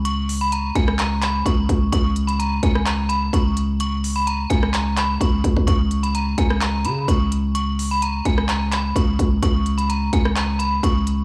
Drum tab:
HH |x-o-x-x-x-x-x-x-|x-xxx-x-x-x-x-x-|x-o-x-x-x-x-x-x-|x-xxx-x-x-x-x-x-|
CP |--------x-x-----|--------x-------|--------x-x-----|--------x-------|
SD |-------r--------|-------r--------|-------r--------|-------r--------|
BD |------o-----o-o-|o-----o-----o---|------o-----o-oo|o-----o-----o---|

HH |x-o-x-x-x-x-x-x-|x-xxx-x-x-x-x-x-|
CP |--------x-x-----|--------x-------|
SD |-------r--------|-------r--------|
BD |------o-----o-o-|o-----o-----o---|